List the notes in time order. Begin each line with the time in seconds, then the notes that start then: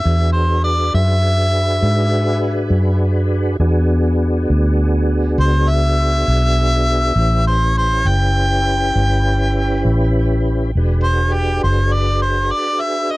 Already playing: E5
0.03 E2 D4 F#4 G#4 B4
0.33 C5
0.64 D5
0.94 F#2 E5
1.82 G#2
2.70 F#2
3.60 E2 B3 D4 F#4 G#4
4.50 D2
5.38 C#2 C5
5.69 E5
6.28 B1
7.16 A1 C#4 E4 G4 B4
7.47 C5
7.78 C5
8.05 F#1 G5
8.95 G1
9.85 A1
10.75 E1 D4 F#4 G#4 B4
11.04 C5
11.34 G4
11.64 F#1 C5
11.93 D5
12.22 C5
12.51 D5
12.81 E5
13.11 D#5